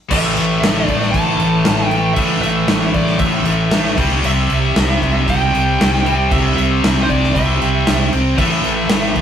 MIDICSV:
0, 0, Header, 1, 5, 480
1, 0, Start_track
1, 0, Key_signature, 0, "minor"
1, 0, Tempo, 517688
1, 97, Time_signature, 4, 2, 24, 8
1, 8544, End_track
2, 0, Start_track
2, 0, Title_t, "Lead electric guitar"
2, 0, Program_c, 0, 29
2, 105, Note_on_c, 0, 76, 86
2, 792, Note_off_c, 0, 76, 0
2, 792, Note_on_c, 0, 74, 86
2, 1030, Note_on_c, 0, 81, 107
2, 1089, Note_off_c, 0, 74, 0
2, 1725, Note_off_c, 0, 81, 0
2, 1725, Note_on_c, 0, 79, 107
2, 1981, Note_on_c, 0, 76, 87
2, 2031, Note_off_c, 0, 79, 0
2, 2232, Note_off_c, 0, 76, 0
2, 2243, Note_on_c, 0, 76, 100
2, 2694, Note_off_c, 0, 76, 0
2, 2732, Note_on_c, 0, 74, 88
2, 2953, Note_off_c, 0, 74, 0
2, 2957, Note_on_c, 0, 76, 79
2, 3647, Note_off_c, 0, 76, 0
2, 3947, Note_on_c, 0, 76, 91
2, 4909, Note_on_c, 0, 79, 110
2, 4927, Note_off_c, 0, 76, 0
2, 5860, Note_on_c, 0, 76, 88
2, 5888, Note_off_c, 0, 79, 0
2, 6074, Note_off_c, 0, 76, 0
2, 6085, Note_on_c, 0, 76, 100
2, 6478, Note_off_c, 0, 76, 0
2, 6513, Note_on_c, 0, 72, 64
2, 6572, Note_off_c, 0, 72, 0
2, 6577, Note_on_c, 0, 74, 84
2, 6804, Note_off_c, 0, 74, 0
2, 6807, Note_on_c, 0, 76, 81
2, 7493, Note_off_c, 0, 76, 0
2, 7776, Note_on_c, 0, 76, 88
2, 8544, Note_off_c, 0, 76, 0
2, 8544, End_track
3, 0, Start_track
3, 0, Title_t, "Distorted electric guitar"
3, 0, Program_c, 1, 30
3, 98, Note_on_c, 1, 45, 98
3, 104, Note_on_c, 1, 52, 101
3, 107, Note_on_c, 1, 57, 102
3, 335, Note_off_c, 1, 45, 0
3, 338, Note_off_c, 1, 52, 0
3, 339, Note_on_c, 1, 45, 93
3, 342, Note_on_c, 1, 52, 84
3, 344, Note_off_c, 1, 57, 0
3, 347, Note_on_c, 1, 57, 87
3, 573, Note_off_c, 1, 45, 0
3, 577, Note_on_c, 1, 45, 100
3, 584, Note_off_c, 1, 52, 0
3, 587, Note_on_c, 1, 52, 100
3, 588, Note_off_c, 1, 57, 0
3, 591, Note_on_c, 1, 57, 109
3, 798, Note_off_c, 1, 45, 0
3, 809, Note_on_c, 1, 45, 86
3, 812, Note_off_c, 1, 52, 0
3, 812, Note_off_c, 1, 57, 0
3, 816, Note_on_c, 1, 52, 98
3, 823, Note_on_c, 1, 57, 96
3, 1042, Note_off_c, 1, 45, 0
3, 1053, Note_off_c, 1, 57, 0
3, 1053, Note_on_c, 1, 45, 88
3, 1058, Note_off_c, 1, 52, 0
3, 1061, Note_on_c, 1, 52, 106
3, 1064, Note_on_c, 1, 57, 93
3, 1280, Note_off_c, 1, 45, 0
3, 1291, Note_on_c, 1, 45, 92
3, 1293, Note_off_c, 1, 57, 0
3, 1294, Note_off_c, 1, 52, 0
3, 1298, Note_on_c, 1, 52, 97
3, 1305, Note_on_c, 1, 57, 96
3, 1515, Note_off_c, 1, 45, 0
3, 1526, Note_on_c, 1, 45, 107
3, 1529, Note_off_c, 1, 57, 0
3, 1531, Note_off_c, 1, 52, 0
3, 1535, Note_on_c, 1, 52, 99
3, 1540, Note_on_c, 1, 57, 99
3, 1755, Note_off_c, 1, 45, 0
3, 1766, Note_on_c, 1, 45, 80
3, 1768, Note_off_c, 1, 57, 0
3, 1769, Note_off_c, 1, 52, 0
3, 1772, Note_on_c, 1, 52, 88
3, 1779, Note_on_c, 1, 57, 86
3, 1993, Note_off_c, 1, 45, 0
3, 2005, Note_on_c, 1, 45, 102
3, 2007, Note_off_c, 1, 52, 0
3, 2008, Note_off_c, 1, 57, 0
3, 2011, Note_on_c, 1, 52, 97
3, 2019, Note_on_c, 1, 57, 108
3, 2236, Note_off_c, 1, 45, 0
3, 2247, Note_off_c, 1, 57, 0
3, 2247, Note_on_c, 1, 45, 79
3, 2250, Note_off_c, 1, 52, 0
3, 2253, Note_on_c, 1, 52, 91
3, 2258, Note_on_c, 1, 57, 94
3, 2474, Note_off_c, 1, 45, 0
3, 2485, Note_on_c, 1, 45, 104
3, 2486, Note_off_c, 1, 52, 0
3, 2488, Note_off_c, 1, 57, 0
3, 2490, Note_on_c, 1, 52, 105
3, 2499, Note_on_c, 1, 57, 112
3, 2712, Note_off_c, 1, 45, 0
3, 2723, Note_on_c, 1, 45, 88
3, 2725, Note_off_c, 1, 57, 0
3, 2730, Note_off_c, 1, 52, 0
3, 2734, Note_on_c, 1, 52, 82
3, 2736, Note_on_c, 1, 57, 89
3, 2953, Note_off_c, 1, 45, 0
3, 2964, Note_off_c, 1, 57, 0
3, 2964, Note_on_c, 1, 45, 99
3, 2969, Note_off_c, 1, 52, 0
3, 2972, Note_on_c, 1, 52, 100
3, 2975, Note_on_c, 1, 57, 98
3, 3197, Note_off_c, 1, 45, 0
3, 3208, Note_off_c, 1, 57, 0
3, 3208, Note_on_c, 1, 45, 93
3, 3210, Note_off_c, 1, 52, 0
3, 3214, Note_on_c, 1, 52, 95
3, 3219, Note_on_c, 1, 57, 99
3, 3436, Note_off_c, 1, 45, 0
3, 3444, Note_off_c, 1, 52, 0
3, 3445, Note_off_c, 1, 57, 0
3, 3447, Note_on_c, 1, 45, 102
3, 3448, Note_on_c, 1, 52, 110
3, 3456, Note_on_c, 1, 57, 107
3, 3675, Note_off_c, 1, 45, 0
3, 3680, Note_off_c, 1, 57, 0
3, 3690, Note_on_c, 1, 48, 103
3, 3691, Note_off_c, 1, 52, 0
3, 3695, Note_on_c, 1, 55, 94
3, 3701, Note_on_c, 1, 60, 104
3, 3918, Note_off_c, 1, 48, 0
3, 3922, Note_on_c, 1, 48, 97
3, 3929, Note_off_c, 1, 55, 0
3, 3933, Note_on_c, 1, 55, 98
3, 3934, Note_off_c, 1, 60, 0
3, 3938, Note_on_c, 1, 60, 99
3, 4160, Note_off_c, 1, 48, 0
3, 4164, Note_on_c, 1, 48, 83
3, 4168, Note_off_c, 1, 55, 0
3, 4172, Note_on_c, 1, 55, 84
3, 4175, Note_off_c, 1, 60, 0
3, 4179, Note_on_c, 1, 60, 88
3, 4406, Note_off_c, 1, 48, 0
3, 4410, Note_on_c, 1, 48, 98
3, 4414, Note_off_c, 1, 55, 0
3, 4418, Note_on_c, 1, 55, 103
3, 4420, Note_off_c, 1, 60, 0
3, 4424, Note_on_c, 1, 60, 110
3, 4646, Note_off_c, 1, 48, 0
3, 4650, Note_on_c, 1, 48, 82
3, 4653, Note_off_c, 1, 55, 0
3, 4656, Note_on_c, 1, 55, 83
3, 4657, Note_off_c, 1, 60, 0
3, 4661, Note_on_c, 1, 60, 89
3, 4876, Note_off_c, 1, 48, 0
3, 4884, Note_off_c, 1, 55, 0
3, 4887, Note_on_c, 1, 48, 93
3, 4895, Note_off_c, 1, 60, 0
3, 4895, Note_on_c, 1, 55, 98
3, 4899, Note_on_c, 1, 60, 102
3, 5115, Note_off_c, 1, 48, 0
3, 5120, Note_off_c, 1, 55, 0
3, 5126, Note_on_c, 1, 48, 93
3, 5131, Note_on_c, 1, 55, 103
3, 5135, Note_off_c, 1, 60, 0
3, 5139, Note_on_c, 1, 60, 91
3, 5359, Note_off_c, 1, 48, 0
3, 5366, Note_off_c, 1, 55, 0
3, 5370, Note_on_c, 1, 48, 90
3, 5376, Note_off_c, 1, 60, 0
3, 5377, Note_on_c, 1, 55, 116
3, 5380, Note_on_c, 1, 60, 113
3, 5601, Note_off_c, 1, 48, 0
3, 5609, Note_off_c, 1, 55, 0
3, 5612, Note_on_c, 1, 48, 89
3, 5618, Note_off_c, 1, 60, 0
3, 5620, Note_on_c, 1, 55, 90
3, 5621, Note_on_c, 1, 60, 96
3, 5833, Note_off_c, 1, 48, 0
3, 5839, Note_off_c, 1, 55, 0
3, 5844, Note_on_c, 1, 48, 90
3, 5850, Note_on_c, 1, 55, 101
3, 5851, Note_off_c, 1, 60, 0
3, 5855, Note_on_c, 1, 60, 115
3, 6073, Note_off_c, 1, 48, 0
3, 6078, Note_off_c, 1, 55, 0
3, 6084, Note_on_c, 1, 48, 86
3, 6090, Note_on_c, 1, 55, 89
3, 6094, Note_off_c, 1, 60, 0
3, 6098, Note_on_c, 1, 60, 85
3, 6309, Note_off_c, 1, 48, 0
3, 6317, Note_off_c, 1, 55, 0
3, 6320, Note_on_c, 1, 48, 99
3, 6329, Note_off_c, 1, 60, 0
3, 6329, Note_on_c, 1, 55, 108
3, 6333, Note_on_c, 1, 60, 118
3, 6554, Note_off_c, 1, 48, 0
3, 6564, Note_off_c, 1, 55, 0
3, 6565, Note_on_c, 1, 48, 78
3, 6575, Note_on_c, 1, 55, 85
3, 6576, Note_off_c, 1, 60, 0
3, 6580, Note_on_c, 1, 60, 96
3, 6795, Note_off_c, 1, 48, 0
3, 6801, Note_off_c, 1, 55, 0
3, 6806, Note_on_c, 1, 48, 97
3, 6812, Note_on_c, 1, 55, 101
3, 6814, Note_off_c, 1, 60, 0
3, 6818, Note_on_c, 1, 60, 116
3, 7036, Note_off_c, 1, 48, 0
3, 7044, Note_off_c, 1, 55, 0
3, 7047, Note_on_c, 1, 48, 92
3, 7055, Note_on_c, 1, 55, 88
3, 7056, Note_off_c, 1, 60, 0
3, 7060, Note_on_c, 1, 60, 105
3, 7276, Note_off_c, 1, 48, 0
3, 7283, Note_off_c, 1, 55, 0
3, 7288, Note_on_c, 1, 48, 106
3, 7295, Note_on_c, 1, 55, 100
3, 7298, Note_off_c, 1, 60, 0
3, 7302, Note_on_c, 1, 60, 111
3, 7517, Note_off_c, 1, 48, 0
3, 7522, Note_off_c, 1, 55, 0
3, 7528, Note_on_c, 1, 48, 75
3, 7533, Note_on_c, 1, 55, 81
3, 7536, Note_off_c, 1, 60, 0
3, 7540, Note_on_c, 1, 60, 89
3, 7756, Note_off_c, 1, 48, 0
3, 7758, Note_off_c, 1, 55, 0
3, 7769, Note_on_c, 1, 45, 108
3, 7774, Note_off_c, 1, 60, 0
3, 7774, Note_on_c, 1, 52, 101
3, 7778, Note_on_c, 1, 57, 104
3, 8008, Note_off_c, 1, 45, 0
3, 8012, Note_on_c, 1, 45, 84
3, 8016, Note_off_c, 1, 52, 0
3, 8020, Note_on_c, 1, 52, 80
3, 8022, Note_off_c, 1, 57, 0
3, 8026, Note_on_c, 1, 57, 91
3, 8246, Note_off_c, 1, 45, 0
3, 8249, Note_on_c, 1, 45, 99
3, 8250, Note_off_c, 1, 52, 0
3, 8254, Note_on_c, 1, 52, 99
3, 8258, Note_off_c, 1, 57, 0
3, 8262, Note_on_c, 1, 57, 113
3, 8484, Note_off_c, 1, 45, 0
3, 8487, Note_on_c, 1, 45, 95
3, 8493, Note_off_c, 1, 52, 0
3, 8496, Note_on_c, 1, 52, 91
3, 8497, Note_off_c, 1, 57, 0
3, 8501, Note_on_c, 1, 57, 108
3, 8544, Note_off_c, 1, 45, 0
3, 8544, Note_off_c, 1, 52, 0
3, 8544, Note_off_c, 1, 57, 0
3, 8544, End_track
4, 0, Start_track
4, 0, Title_t, "Fingered electric bass"
4, 0, Program_c, 2, 33
4, 99, Note_on_c, 2, 33, 104
4, 317, Note_off_c, 2, 33, 0
4, 347, Note_on_c, 2, 33, 94
4, 562, Note_off_c, 2, 33, 0
4, 577, Note_on_c, 2, 33, 86
4, 796, Note_off_c, 2, 33, 0
4, 820, Note_on_c, 2, 33, 86
4, 1038, Note_off_c, 2, 33, 0
4, 1059, Note_on_c, 2, 33, 97
4, 1277, Note_off_c, 2, 33, 0
4, 1295, Note_on_c, 2, 33, 91
4, 1514, Note_off_c, 2, 33, 0
4, 1534, Note_on_c, 2, 33, 96
4, 1977, Note_off_c, 2, 33, 0
4, 2010, Note_on_c, 2, 33, 106
4, 2231, Note_off_c, 2, 33, 0
4, 2249, Note_on_c, 2, 33, 94
4, 2471, Note_off_c, 2, 33, 0
4, 2491, Note_on_c, 2, 33, 94
4, 2711, Note_off_c, 2, 33, 0
4, 2731, Note_on_c, 2, 33, 87
4, 2951, Note_off_c, 2, 33, 0
4, 2965, Note_on_c, 2, 33, 101
4, 3188, Note_off_c, 2, 33, 0
4, 3203, Note_on_c, 2, 33, 93
4, 3426, Note_off_c, 2, 33, 0
4, 3447, Note_on_c, 2, 33, 97
4, 3668, Note_off_c, 2, 33, 0
4, 3689, Note_on_c, 2, 36, 87
4, 3909, Note_off_c, 2, 36, 0
4, 3928, Note_on_c, 2, 36, 101
4, 4149, Note_off_c, 2, 36, 0
4, 4172, Note_on_c, 2, 36, 102
4, 4391, Note_off_c, 2, 36, 0
4, 4403, Note_on_c, 2, 36, 99
4, 4626, Note_off_c, 2, 36, 0
4, 4655, Note_on_c, 2, 36, 86
4, 4872, Note_off_c, 2, 36, 0
4, 4897, Note_on_c, 2, 36, 91
4, 5113, Note_off_c, 2, 36, 0
4, 5139, Note_on_c, 2, 36, 90
4, 5354, Note_off_c, 2, 36, 0
4, 5381, Note_on_c, 2, 36, 89
4, 5818, Note_off_c, 2, 36, 0
4, 5857, Note_on_c, 2, 36, 105
4, 6073, Note_off_c, 2, 36, 0
4, 6089, Note_on_c, 2, 36, 88
4, 6309, Note_off_c, 2, 36, 0
4, 6339, Note_on_c, 2, 36, 83
4, 6555, Note_off_c, 2, 36, 0
4, 6573, Note_on_c, 2, 36, 81
4, 6791, Note_off_c, 2, 36, 0
4, 6816, Note_on_c, 2, 36, 100
4, 7033, Note_off_c, 2, 36, 0
4, 7057, Note_on_c, 2, 36, 84
4, 7274, Note_off_c, 2, 36, 0
4, 7299, Note_on_c, 2, 36, 88
4, 7515, Note_off_c, 2, 36, 0
4, 7533, Note_on_c, 2, 36, 93
4, 7752, Note_off_c, 2, 36, 0
4, 8011, Note_on_c, 2, 33, 93
4, 8231, Note_off_c, 2, 33, 0
4, 8253, Note_on_c, 2, 33, 91
4, 8473, Note_off_c, 2, 33, 0
4, 8489, Note_on_c, 2, 33, 90
4, 8544, Note_off_c, 2, 33, 0
4, 8544, End_track
5, 0, Start_track
5, 0, Title_t, "Drums"
5, 99, Note_on_c, 9, 49, 125
5, 99, Note_on_c, 9, 57, 90
5, 100, Note_on_c, 9, 36, 123
5, 192, Note_off_c, 9, 49, 0
5, 192, Note_off_c, 9, 57, 0
5, 193, Note_off_c, 9, 36, 0
5, 340, Note_on_c, 9, 57, 66
5, 433, Note_off_c, 9, 57, 0
5, 587, Note_on_c, 9, 57, 81
5, 590, Note_on_c, 9, 38, 121
5, 680, Note_off_c, 9, 57, 0
5, 682, Note_off_c, 9, 38, 0
5, 819, Note_on_c, 9, 36, 76
5, 820, Note_on_c, 9, 57, 62
5, 912, Note_off_c, 9, 36, 0
5, 913, Note_off_c, 9, 57, 0
5, 946, Note_on_c, 9, 38, 32
5, 1039, Note_off_c, 9, 38, 0
5, 1058, Note_on_c, 9, 36, 99
5, 1059, Note_on_c, 9, 57, 77
5, 1151, Note_off_c, 9, 36, 0
5, 1152, Note_off_c, 9, 57, 0
5, 1294, Note_on_c, 9, 57, 59
5, 1387, Note_off_c, 9, 57, 0
5, 1528, Note_on_c, 9, 57, 82
5, 1531, Note_on_c, 9, 38, 113
5, 1621, Note_off_c, 9, 57, 0
5, 1624, Note_off_c, 9, 38, 0
5, 1771, Note_on_c, 9, 57, 61
5, 1864, Note_off_c, 9, 57, 0
5, 2004, Note_on_c, 9, 57, 92
5, 2010, Note_on_c, 9, 36, 119
5, 2097, Note_off_c, 9, 57, 0
5, 2103, Note_off_c, 9, 36, 0
5, 2254, Note_on_c, 9, 57, 55
5, 2257, Note_on_c, 9, 38, 32
5, 2347, Note_off_c, 9, 57, 0
5, 2349, Note_off_c, 9, 38, 0
5, 2484, Note_on_c, 9, 57, 83
5, 2486, Note_on_c, 9, 38, 113
5, 2576, Note_off_c, 9, 57, 0
5, 2579, Note_off_c, 9, 38, 0
5, 2727, Note_on_c, 9, 57, 56
5, 2728, Note_on_c, 9, 36, 72
5, 2819, Note_off_c, 9, 57, 0
5, 2821, Note_off_c, 9, 36, 0
5, 2847, Note_on_c, 9, 38, 36
5, 2939, Note_off_c, 9, 38, 0
5, 2958, Note_on_c, 9, 57, 81
5, 2964, Note_on_c, 9, 36, 113
5, 3050, Note_off_c, 9, 57, 0
5, 3057, Note_off_c, 9, 36, 0
5, 3202, Note_on_c, 9, 57, 70
5, 3295, Note_off_c, 9, 57, 0
5, 3441, Note_on_c, 9, 57, 93
5, 3444, Note_on_c, 9, 38, 112
5, 3534, Note_off_c, 9, 57, 0
5, 3537, Note_off_c, 9, 38, 0
5, 3687, Note_on_c, 9, 57, 104
5, 3688, Note_on_c, 9, 36, 114
5, 3780, Note_off_c, 9, 36, 0
5, 3780, Note_off_c, 9, 57, 0
5, 3931, Note_on_c, 9, 57, 92
5, 4023, Note_off_c, 9, 57, 0
5, 4169, Note_on_c, 9, 57, 63
5, 4262, Note_off_c, 9, 57, 0
5, 4414, Note_on_c, 9, 57, 86
5, 4416, Note_on_c, 9, 38, 110
5, 4506, Note_off_c, 9, 57, 0
5, 4509, Note_off_c, 9, 38, 0
5, 4654, Note_on_c, 9, 36, 73
5, 4664, Note_on_c, 9, 57, 54
5, 4747, Note_off_c, 9, 36, 0
5, 4757, Note_off_c, 9, 57, 0
5, 4896, Note_on_c, 9, 36, 107
5, 4902, Note_on_c, 9, 57, 83
5, 4988, Note_off_c, 9, 36, 0
5, 4994, Note_off_c, 9, 57, 0
5, 5142, Note_on_c, 9, 57, 67
5, 5234, Note_off_c, 9, 57, 0
5, 5385, Note_on_c, 9, 57, 86
5, 5388, Note_on_c, 9, 38, 118
5, 5478, Note_off_c, 9, 57, 0
5, 5480, Note_off_c, 9, 38, 0
5, 5622, Note_on_c, 9, 57, 62
5, 5714, Note_off_c, 9, 57, 0
5, 5854, Note_on_c, 9, 36, 127
5, 5857, Note_on_c, 9, 57, 90
5, 5947, Note_off_c, 9, 36, 0
5, 5950, Note_off_c, 9, 57, 0
5, 6102, Note_on_c, 9, 57, 59
5, 6195, Note_off_c, 9, 57, 0
5, 6341, Note_on_c, 9, 57, 83
5, 6344, Note_on_c, 9, 38, 118
5, 6434, Note_off_c, 9, 57, 0
5, 6437, Note_off_c, 9, 38, 0
5, 6575, Note_on_c, 9, 36, 77
5, 6582, Note_on_c, 9, 57, 53
5, 6668, Note_off_c, 9, 36, 0
5, 6674, Note_off_c, 9, 57, 0
5, 6708, Note_on_c, 9, 38, 34
5, 6801, Note_off_c, 9, 38, 0
5, 6817, Note_on_c, 9, 36, 110
5, 6824, Note_on_c, 9, 57, 82
5, 6909, Note_off_c, 9, 36, 0
5, 6917, Note_off_c, 9, 57, 0
5, 7061, Note_on_c, 9, 57, 63
5, 7154, Note_off_c, 9, 57, 0
5, 7295, Note_on_c, 9, 57, 88
5, 7298, Note_on_c, 9, 38, 115
5, 7388, Note_off_c, 9, 57, 0
5, 7391, Note_off_c, 9, 38, 0
5, 7534, Note_on_c, 9, 57, 68
5, 7627, Note_off_c, 9, 57, 0
5, 7772, Note_on_c, 9, 36, 127
5, 7773, Note_on_c, 9, 57, 98
5, 7864, Note_off_c, 9, 36, 0
5, 7866, Note_off_c, 9, 57, 0
5, 8009, Note_on_c, 9, 57, 64
5, 8102, Note_off_c, 9, 57, 0
5, 8245, Note_on_c, 9, 57, 96
5, 8248, Note_on_c, 9, 38, 119
5, 8338, Note_off_c, 9, 57, 0
5, 8341, Note_off_c, 9, 38, 0
5, 8488, Note_on_c, 9, 57, 61
5, 8491, Note_on_c, 9, 36, 75
5, 8544, Note_off_c, 9, 36, 0
5, 8544, Note_off_c, 9, 57, 0
5, 8544, End_track
0, 0, End_of_file